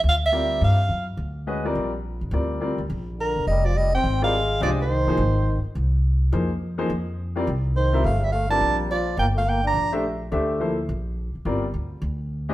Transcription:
X:1
M:4/4
L:1/8
Q:"Swing" 1/4=210
K:Gphr
V:1 name="Soprano saxophone"
f =e3 f3 z | z8 | z6 B2 | e d e g2 f3 |
d c6 z | z8 | z6 c2 | f =e f =a2 z d2 |
g f g b2 z3 | z8 | z8 |]
V:2 name="Grand piano"
z2 [G,CFBd]3 z3 | z2 [A,_D_G=Be] [=G,CF_B=d]2 z3 | [G,CFBd]2 [G,CFBd] z4 z | z4 z [G,CFBd] z2 |
[A,DGce] z2 [F,B,EAc] z4 | z4 [F,B,EAc] z2 [F,B,EAc] | z3 [G,CFBd] z3 [G,CFB=e] | z3 [G,CFBd]3 z2 |
z4 z [=A,DGc=e] z2 | [=A,DGc=e]2 [F,B,=E=Ac] z4 z | [G,CFBd] z6 [A,DGce] |]
V:3 name="Trombone" clef=bass
z8 | z8 | z6 D,2 | G, F, G, C2 A,3 |
F, E,6 z | z8 | z6 E,2 | =A, G, A, D2 z F,2 |
B, =A, B, D2 z3 | z8 | z8 |]
V:4 name="Upright bass" clef=bass
D,,4 G,,2 _G,,2 | D,,4 B,,,3 A,,, | D,,3 D,, B,,,3 =E,,, | F,,,4 A,,,4 |
C,,3 C, A,,,3 z | C,,4 F,,4 | F,,4 C,,4 | G,,,4 B,,,4 |
G,,,4 B,,,4 | D,,4 B,,,3 z | G,,,2 D,,2 D,,4 |]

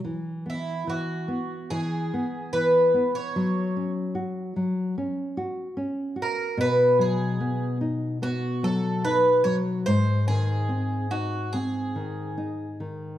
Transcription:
X:1
M:4/4
L:1/16
Q:1/4=73
K:E
V:1 name="Twelve-string acoustic guitar"
z2 E2 F4 G4 B3 c- | c3 z8 z3 ^A2 | B2 G4 z2 F2 A2 B2 c2 | ^B2 G4 F2 G6 z2 |]
V:2 name="Nylon-string guitar"
E,2 B,2 E,2 B,2 E,2 B,2 E,2 B,2 | F,2 C2 F2 F,2 C2 F2 C2 F2 | B,,2 F,2 B,2 D2 B,2 F,2 D2 F,2 | G,,2 D,2 ^B,2 D2 B,2 D,2 D2 D,2 |]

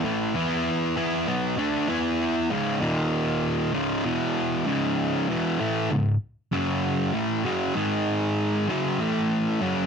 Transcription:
X:1
M:4/4
L:1/8
Q:1/4=97
K:C#m
V:1 name="Distorted electric guitar" clef=bass
[A,,E,A,] [E,B,E]2 [E,B,E] [B,,F,B,] [=D,A,=D] [E,B,E]2 | [C,,G,,C,] [D,,^A,,D,]3 [C,,G,,C,] [E,,B,,E,]2 [C,,G,,C,]- | [C,,G,,C,] [E,,B,,E,] [A,,E,A,] [C,,G,,] z [F,,C,F,]2 [A,,E,A,] | [F,,C,F,] [G,,D,G,]3 [F,,C,F,] [A,,E,A,]2 [F,,C,F,] |]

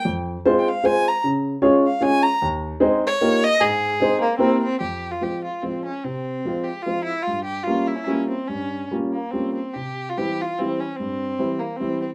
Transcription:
X:1
M:3/4
L:1/16
Q:"Swing" 1/4=148
K:Ab
V:1 name="Violin"
z4 z3/2 g/2 f2 a2 b2 | z6 f2 a2 b2 | z6 d4 e2 | A6 B,2 C2 C2 |
[K:Fm] G3 F G2 F2 C2 D2 | C6 G2 F2 =E2 | F2 G2 F2 =E/2 D/2 E D2 C2 | D4 z2 B,2 C2 C2 |
G3 F G2 F2 C2 D2 | C6 B,2 C2 C2 |]
V:2 name="Upright piano"
F,,4 [A,CFAc]2 z2 [A,CFAc]2 z2 | D,4 [A,DFAd]2 z2 [A,DFAd]2 z2 | E,,4 [A,CEAc]2 z2 [B,EFGB]2 z2 | A,,4 [A,CEAc]2 z2 [B,C=EGB]2 z2 |
[K:Fm] F,,4 [F,A,CF]2 z2 [F,A,CF]2 z2 | C,4 [F,A,CF]2 z2 [F,A,CF]2 z2 | G,,4 [G,B,DF]2 z2 [G,B,DF]2 z2 | G,,4 [G,B,DF]2 z2 [G,B,DF]2 z2 |
C,4 [=E,G,C=E]2 z2 [E,G,CE]2 z2 | G,,4 [=E,G,C=E]2 z2 [E,G,CE]2 z2 |]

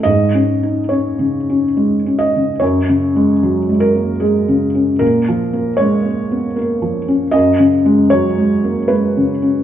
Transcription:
X:1
M:3/4
L:1/8
Q:1/4=75
K:F#
V:1 name="Felt piano"
d2 c3 d | c3 A G2 | A2 c2 z2 | d2 c2 B2 |]
V:2 name="Felt piano" clef=bass
(3G,, C D (3C C, C (3G, C C, | (3F,, C, G, (3F, G, A, (3G, C, C | (3A,, E, A, (3G, A, B, (3A, E, C | (3F,, C, G, (3F, G, A, (3G, C, C |]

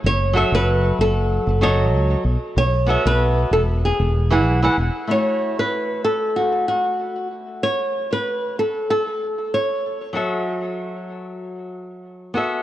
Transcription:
X:1
M:4/4
L:1/16
Q:"Swing 16ths" 1/4=95
K:A
V:1 name="Nylon-string guitar"
c3 B3 A4 c4 z2 | c3 B3 A2 G6 z2 | c3 B3 A2 F2 F4 z2 | c3 B3 A2 A4 c3 z |
z16 |]
V:2 name="Nylon-string guitar"
z2 [F,FAe]8 [F,FA^d]4 z2 | z2 [B,FAe]6 z3 [E,EGf]2 [E,EGf] z2 | [A,EFc]16- | [A,EFc]16 |
[F,FAe]12- [F,FAe]2 [B,FAe]2 |]
V:3 name="Fretless electric bass" clef=bass
F,,,2 z F,,,2 z F,,,2 z F,,,3 C,, z B,,, z | B,,,2 z B,,,2 z E,,,2 z E,,,3 B,,, z E,,, z | z16 | z16 |
z16 |]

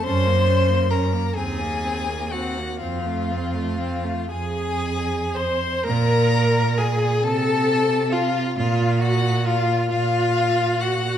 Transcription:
X:1
M:6/8
L:1/16
Q:3/8=44
K:Fphr
V:1 name="Violin"
c'4 b2 a4 g2 | f6 a4 c'2 | b4 a2 =a4 f2 | f2 g2 f2 f4 g2 |]
V:2 name="Violin"
c4 B2 A4 G2 | F6 A4 c2 | B4 A2 =A4 F2 | F2 G2 F2 F4 G2 |]
V:3 name="Viola"
D B, D B, D B, C B, C B, C B, | C =A, C A, C A, _A4 c2 | B4 A2 =A4 F2 | F2 G2 F2 F4 G2 |]
V:4 name="Cello" clef=bass
G,,6 E,,6 | F,,6 F,,6 | B,,6 C,6 | B,,6 B,,6 |]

